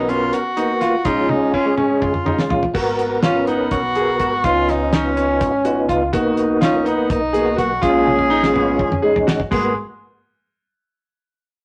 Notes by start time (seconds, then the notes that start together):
Already playing: B1 B3 D#4 F#4 A#4
0.09 C#4 F4, closed hi-hat
0.33 F#4, closed hi-hat
0.57 A#3 B3 D#4 F#4, closed hi-hat
0.81 F4, snare, closed hi-hat
1.05 A#1 G#3 C#4 D#4 F4, kick, closed hi-hat
1.29 D#4, high tom
1.54 C#4 F4, kick
1.65 G#3 C#4 G#4
1.77 C#4, mid tom
2.01 F4, kick, mid tom
2.14 mid tom
2.25 G#3 C#4 D#4 F4, mid tom
2.39 snare
2.50 A#1 F4, floor tom
2.63 floor tom
2.74 G#1 B3 F#4 A#4, kick, crash
2.99 closed hi-hat
3.23 C#4 F4, snare, closed hi-hat
3.35 B3 C#4 A#4
3.47 B3 D#4, closed hi-hat
3.71 B1 F#4, kick, closed hi-hat
3.95 B3 F#4 G#4 A#4, closed hi-hat
4.20 G#1 F#4, kick, closed hi-hat
4.44 C#2 B3 C#4 D#4 F4, kick, closed hi-hat
4.69 D#4, snare, closed hi-hat
4.93 C#4 D#4, snare, closed hi-hat
5.04 B3 D#4 F4
5.17 C#4, closed hi-hat
5.41 G#1, kick, closed hi-hat
5.65 B3 D#4 F4 F#4, closed hi-hat
5.89 C#2 F4, kick, closed hi-hat
6.13 B1 A#3 B3 D#4 F#4, kick, closed hi-hat
6.37 closed hi-hat
6.61 C#4 F4, snare, closed hi-hat
6.74 A#3 B3 D#4
6.85 B3 D#4, closed hi-hat
7.10 B1 D#4, kick, closed hi-hat
7.33 A#3 B3 F#4 G#4, closed hi-hat
7.57 B1 F#4, kick, closed hi-hat
7.81 A#1 G#3 C#4 F4 G#4, kick, closed hi-hat
8.07 high tom
8.19 kick
8.30 D#4
8.43 G#3 C#4 F4, snare
8.54 B3 C#4, mid tom
8.79 F2 C#4, kick
8.92 mid tom
9.02 G#3 C#4 D#4 G#4
9.16 floor tom
9.27 G#1 F#4, snare
9.40 kick
9.51 G#1 G#3 A#3 B3 F#4 G#4, kick, crash